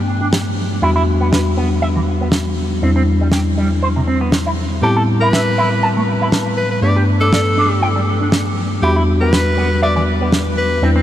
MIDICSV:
0, 0, Header, 1, 5, 480
1, 0, Start_track
1, 0, Key_signature, 1, "minor"
1, 0, Tempo, 500000
1, 795, Time_signature, 4, 2, 24, 8
1, 10583, End_track
2, 0, Start_track
2, 0, Title_t, "Tenor saxophone"
2, 0, Program_c, 0, 66
2, 4631, Note_on_c, 0, 67, 80
2, 4768, Note_off_c, 0, 67, 0
2, 4998, Note_on_c, 0, 71, 90
2, 5669, Note_off_c, 0, 71, 0
2, 6311, Note_on_c, 0, 71, 83
2, 6396, Note_off_c, 0, 71, 0
2, 6440, Note_on_c, 0, 71, 68
2, 6513, Note_off_c, 0, 71, 0
2, 6548, Note_on_c, 0, 74, 81
2, 6686, Note_off_c, 0, 74, 0
2, 6918, Note_on_c, 0, 69, 89
2, 7589, Note_off_c, 0, 69, 0
2, 8470, Note_on_c, 0, 67, 81
2, 8607, Note_off_c, 0, 67, 0
2, 8839, Note_on_c, 0, 71, 87
2, 9430, Note_off_c, 0, 71, 0
2, 9435, Note_on_c, 0, 74, 80
2, 9518, Note_off_c, 0, 74, 0
2, 9562, Note_on_c, 0, 74, 65
2, 9634, Note_off_c, 0, 74, 0
2, 10150, Note_on_c, 0, 71, 89
2, 10444, Note_off_c, 0, 71, 0
2, 10583, End_track
3, 0, Start_track
3, 0, Title_t, "Clean electric guitar"
3, 0, Program_c, 1, 27
3, 200, Note_on_c, 1, 62, 68
3, 257, Note_off_c, 1, 62, 0
3, 789, Note_on_c, 1, 64, 89
3, 857, Note_off_c, 1, 64, 0
3, 919, Note_on_c, 1, 64, 92
3, 977, Note_off_c, 1, 64, 0
3, 1158, Note_on_c, 1, 59, 68
3, 1217, Note_off_c, 1, 59, 0
3, 1269, Note_on_c, 1, 71, 76
3, 1337, Note_off_c, 1, 71, 0
3, 1510, Note_on_c, 1, 59, 87
3, 1609, Note_off_c, 1, 59, 0
3, 1748, Note_on_c, 1, 76, 68
3, 1790, Note_off_c, 1, 76, 0
3, 1879, Note_on_c, 1, 52, 67
3, 1915, Note_off_c, 1, 52, 0
3, 2122, Note_on_c, 1, 59, 66
3, 2178, Note_off_c, 1, 59, 0
3, 2711, Note_on_c, 1, 60, 87
3, 2778, Note_off_c, 1, 60, 0
3, 2841, Note_on_c, 1, 60, 91
3, 2898, Note_off_c, 1, 60, 0
3, 3082, Note_on_c, 1, 55, 66
3, 3139, Note_off_c, 1, 55, 0
3, 3192, Note_on_c, 1, 67, 70
3, 3258, Note_off_c, 1, 67, 0
3, 3432, Note_on_c, 1, 55, 85
3, 3531, Note_off_c, 1, 55, 0
3, 3672, Note_on_c, 1, 72, 69
3, 3712, Note_off_c, 1, 72, 0
3, 3803, Note_on_c, 1, 48, 67
3, 3837, Note_off_c, 1, 48, 0
3, 3911, Note_on_c, 1, 60, 89
3, 4010, Note_off_c, 1, 60, 0
3, 4043, Note_on_c, 1, 59, 84
3, 4126, Note_off_c, 1, 59, 0
3, 4285, Note_on_c, 1, 64, 65
3, 4318, Note_off_c, 1, 64, 0
3, 4634, Note_on_c, 1, 69, 83
3, 4699, Note_off_c, 1, 69, 0
3, 4766, Note_on_c, 1, 69, 96
3, 4820, Note_off_c, 1, 69, 0
3, 5009, Note_on_c, 1, 64, 64
3, 5062, Note_off_c, 1, 64, 0
3, 5119, Note_on_c, 1, 76, 75
3, 5181, Note_off_c, 1, 76, 0
3, 5357, Note_on_c, 1, 64, 88
3, 5453, Note_off_c, 1, 64, 0
3, 5597, Note_on_c, 1, 81, 71
3, 5635, Note_off_c, 1, 81, 0
3, 5728, Note_on_c, 1, 57, 68
3, 5759, Note_off_c, 1, 57, 0
3, 5966, Note_on_c, 1, 64, 69
3, 6021, Note_off_c, 1, 64, 0
3, 6557, Note_on_c, 1, 67, 85
3, 6621, Note_off_c, 1, 67, 0
3, 6686, Note_on_c, 1, 67, 93
3, 6740, Note_off_c, 1, 67, 0
3, 6922, Note_on_c, 1, 62, 68
3, 6978, Note_off_c, 1, 62, 0
3, 7033, Note_on_c, 1, 74, 74
3, 7099, Note_off_c, 1, 74, 0
3, 7272, Note_on_c, 1, 62, 89
3, 7370, Note_off_c, 1, 62, 0
3, 7512, Note_on_c, 1, 79, 70
3, 7552, Note_off_c, 1, 79, 0
3, 7641, Note_on_c, 1, 55, 68
3, 7676, Note_off_c, 1, 55, 0
3, 7884, Note_on_c, 1, 62, 69
3, 7939, Note_off_c, 1, 62, 0
3, 8473, Note_on_c, 1, 64, 85
3, 8539, Note_off_c, 1, 64, 0
3, 8603, Note_on_c, 1, 64, 93
3, 8659, Note_off_c, 1, 64, 0
3, 8846, Note_on_c, 1, 59, 66
3, 8900, Note_off_c, 1, 59, 0
3, 8955, Note_on_c, 1, 71, 73
3, 9020, Note_off_c, 1, 71, 0
3, 9191, Note_on_c, 1, 59, 90
3, 9290, Note_off_c, 1, 59, 0
3, 9431, Note_on_c, 1, 76, 71
3, 9472, Note_off_c, 1, 76, 0
3, 9562, Note_on_c, 1, 52, 64
3, 9596, Note_off_c, 1, 52, 0
3, 9803, Note_on_c, 1, 59, 69
3, 9859, Note_off_c, 1, 59, 0
3, 10391, Note_on_c, 1, 60, 90
3, 10458, Note_off_c, 1, 60, 0
3, 10519, Note_on_c, 1, 60, 94
3, 10577, Note_off_c, 1, 60, 0
3, 10583, End_track
4, 0, Start_track
4, 0, Title_t, "Tine electric piano"
4, 0, Program_c, 2, 4
4, 0, Note_on_c, 2, 43, 69
4, 0, Note_on_c, 2, 57, 63
4, 0, Note_on_c, 2, 59, 63
4, 0, Note_on_c, 2, 62, 63
4, 764, Note_off_c, 2, 43, 0
4, 766, Note_off_c, 2, 57, 0
4, 769, Note_off_c, 2, 59, 0
4, 771, Note_off_c, 2, 62, 0
4, 784, Note_on_c, 2, 40, 68
4, 788, Note_on_c, 2, 55, 66
4, 793, Note_on_c, 2, 59, 63
4, 798, Note_on_c, 2, 62, 65
4, 802, Note_on_c, 2, 66, 79
4, 2683, Note_off_c, 2, 40, 0
4, 2685, Note_off_c, 2, 55, 0
4, 2687, Note_off_c, 2, 59, 0
4, 2690, Note_off_c, 2, 62, 0
4, 2692, Note_off_c, 2, 66, 0
4, 2704, Note_on_c, 2, 40, 69
4, 2708, Note_on_c, 2, 55, 65
4, 2718, Note_on_c, 2, 62, 64
4, 2722, Note_on_c, 2, 64, 76
4, 4603, Note_off_c, 2, 40, 0
4, 4605, Note_off_c, 2, 55, 0
4, 4610, Note_off_c, 2, 62, 0
4, 4612, Note_off_c, 2, 64, 0
4, 4624, Note_on_c, 2, 45, 67
4, 4629, Note_on_c, 2, 55, 65
4, 4633, Note_on_c, 2, 59, 64
4, 4638, Note_on_c, 2, 60, 66
4, 4643, Note_on_c, 2, 64, 76
4, 6523, Note_off_c, 2, 45, 0
4, 6525, Note_off_c, 2, 55, 0
4, 6527, Note_off_c, 2, 59, 0
4, 6530, Note_off_c, 2, 60, 0
4, 6532, Note_off_c, 2, 64, 0
4, 6543, Note_on_c, 2, 43, 71
4, 6549, Note_on_c, 2, 57, 63
4, 6554, Note_on_c, 2, 59, 65
4, 6559, Note_on_c, 2, 62, 68
4, 8443, Note_off_c, 2, 43, 0
4, 8445, Note_off_c, 2, 57, 0
4, 8448, Note_off_c, 2, 59, 0
4, 8450, Note_off_c, 2, 62, 0
4, 8463, Note_on_c, 2, 40, 72
4, 8468, Note_on_c, 2, 55, 67
4, 8474, Note_on_c, 2, 59, 66
4, 8478, Note_on_c, 2, 62, 66
4, 8483, Note_on_c, 2, 66, 82
4, 10362, Note_off_c, 2, 40, 0
4, 10365, Note_off_c, 2, 55, 0
4, 10368, Note_off_c, 2, 59, 0
4, 10370, Note_off_c, 2, 62, 0
4, 10372, Note_off_c, 2, 66, 0
4, 10386, Note_on_c, 2, 40, 72
4, 10391, Note_on_c, 2, 55, 67
4, 10397, Note_on_c, 2, 71, 68
4, 10401, Note_on_c, 2, 62, 67
4, 10406, Note_on_c, 2, 64, 80
4, 10583, Note_off_c, 2, 40, 0
4, 10583, Note_off_c, 2, 55, 0
4, 10583, Note_off_c, 2, 62, 0
4, 10583, Note_off_c, 2, 64, 0
4, 10583, Note_off_c, 2, 71, 0
4, 10583, End_track
5, 0, Start_track
5, 0, Title_t, "Drums"
5, 314, Note_on_c, 9, 38, 114
5, 410, Note_off_c, 9, 38, 0
5, 1274, Note_on_c, 9, 38, 107
5, 1370, Note_off_c, 9, 38, 0
5, 2225, Note_on_c, 9, 38, 106
5, 2321, Note_off_c, 9, 38, 0
5, 3184, Note_on_c, 9, 38, 94
5, 3280, Note_off_c, 9, 38, 0
5, 4150, Note_on_c, 9, 38, 110
5, 4246, Note_off_c, 9, 38, 0
5, 5119, Note_on_c, 9, 38, 95
5, 5215, Note_off_c, 9, 38, 0
5, 6070, Note_on_c, 9, 38, 93
5, 6166, Note_off_c, 9, 38, 0
5, 7033, Note_on_c, 9, 38, 112
5, 7129, Note_off_c, 9, 38, 0
5, 7989, Note_on_c, 9, 38, 101
5, 8085, Note_off_c, 9, 38, 0
5, 8955, Note_on_c, 9, 38, 108
5, 9051, Note_off_c, 9, 38, 0
5, 9912, Note_on_c, 9, 38, 98
5, 10008, Note_off_c, 9, 38, 0
5, 10583, End_track
0, 0, End_of_file